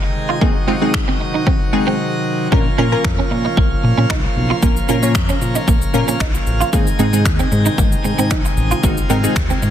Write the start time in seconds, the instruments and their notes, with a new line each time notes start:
Already playing: pipe organ C3 D#3 G#3 D#4
0.03 muted clean electric guitar stroke
0.29 clean electric guitar F4
0.41 pipe organ F#3, synth stab G#3 C4 D#4 G#4, clean electric guitar A#3, kick
0.67 synth stab G#3 C4 D#4 F4, clean electric guitar C4
0.81 synth stab G#3 C4 D#4 G#4, muted clean electric guitar stroke
0.94 finger snap, kick
1.08 clean electric guitar C4
1.20 muted clean electric guitar stroke
1.34 clean electric guitar D#4
1.47 clean electric guitar C4, kick
1.73 synth stab G#3 C4 D#4 G#4, muted clean electric guitar stroke
1.87 clean electric guitar C4
2.52 analog synth bass A#1, pipe organ C#3 F3 A#3 F4, synth stab A#3 C#4 F4 A#4, clean electric guitar A#3, kick
2.78 analog synth bass A#2, synth stab A#3 C#4 F4 A#4, clean electric guitar C#4
2.92 synth stab A#3 C#4 F4 A#4, muted clean electric guitar stroke
3.04 analog synth bass F2, finger snap, kick
3.19 clean electric guitar C#4
3.31 analog synth bass A#2, muted clean electric guitar stroke
3.45 clean electric guitar D#4
3.57 analog synth bass A#1, clean electric guitar A#3, kick
3.84 analog synth bass A#2, muted clean electric guitar stroke
3.98 analog synth bass A#2, clean electric guitar C#4
4.10 analog synth bass C2, clean electric guitar D#4, finger snap, kick
4.24 muted clean electric guitar stroke
4.36 analog synth bass B1
4.50 clean electric guitar F4
4.62 analog synth bass A#1, synth stab A#3 C#4 F4 A#4, clean electric guitar A#3, kick, shaker
4.76 shaker
4.89 analog synth bass A#2, synth stab A#3 C#4 F4 A#4, clean electric guitar C#4, shaker
5.02 synth stab A#3 C#4 F4 C#5, muted clean electric guitar stroke, shaker
5.15 analog synth bass F2, finger snap, kick, shaker
5.29 clean electric guitar C#4, shaker
5.41 analog synth bass A#2, muted clean electric guitar stroke, shaker
5.55 clean electric guitar D#4, shaker
5.68 analog synth bass A#1, clean electric guitar A#3, kick, shaker
5.82 shaker
5.94 analog synth bass A#2, synth stab A#3 C#4 F4 A#4, muted clean electric guitar stroke, shaker
6.08 analog synth bass A#2, clean electric guitar C#4, shaker
6.20 analog synth bass A#1, clean electric guitar D#4, finger snap, kick, shaker
6.34 muted clean electric guitar stroke, shaker
6.47 analog synth bass A1, shaker
6.61 clean electric guitar F4, shaker
6.73 analog synth bass G#1, pipe organ C3 D#3 G#3 D#4, synth stab G#3 C4 D#4 G#4, clean electric guitar A#3, kick, shaker
6.87 shaker
6.99 analog synth bass G#2, synth stab G#3 C4 D#4 G#4, clean electric guitar C4, shaker
7.13 synth stab G#3 C4 D#4 G#4, muted clean electric guitar stroke, shaker
7.25 analog synth bass D#2, finger snap, kick, shaker
7.39 clean electric guitar C4, shaker
7.52 analog synth bass G#2, muted clean electric guitar stroke, shaker
7.66 clean electric guitar D#4, shaker
7.78 analog synth bass G#1, clean electric guitar A#3, kick, shaker
7.92 shaker
8.04 analog synth bass G#2, muted clean electric guitar stroke, shaker
8.18 analog synth bass G#2, clean electric guitar C4, shaker
8.31 analog synth bass A#1, clean electric guitar D#4, finger snap, kick, shaker
8.45 muted clean electric guitar stroke, shaker
8.57 analog synth bass A1, shaker
8.71 clean electric guitar F4, shaker
8.83 analog synth bass G#1, synth stab G#3 C4 D#4 F#4, clean electric guitar A#3, pipe organ F4, kick, shaker
8.97 shaker
9.10 analog synth bass G#2, synth stab G#3 C4 D#4 A#4, clean electric guitar C4, shaker
9.23 synth stab G#3 C4 D#4 G#4, muted clean electric guitar stroke, shaker
9.36 analog synth bass D#2, finger snap, kick, shaker
9.50 clean electric guitar C4, shaker
9.62 analog synth bass G#2, muted clean electric guitar stroke, shaker